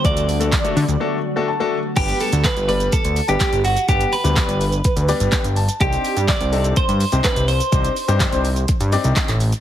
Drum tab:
CC |----------------|x---------------|----------------|----------------|
HH |xxoxxxox--------|xxoxxxoxxxoxxxox|xxoxxxoxxxoxxxox|xxoxxxoxxxoxxxox|
SH |xxxxxxxx--------|xxxxxxxxxxxxxxxx|xxxxxxxxxxxxxxxx|xxxxxxxxxxxxxxxx|
CP |----x-----------|----x-------x---|----x-------x---|----x-------x---|
SD |----o-----------|----o-------o---|----o-------o---|----o-------o---|
BD |o---o-----------|o---o---o---o---|o---o---o---o---|o---o---o---o---|

CC |----------------|
HH |xxoxxxoxxxoxxxox|
SH |xxxxxxxxxxxxxxxx|
CP |----x-------xx--|
SD |----o-------o---|
BD |o---o---o---o---|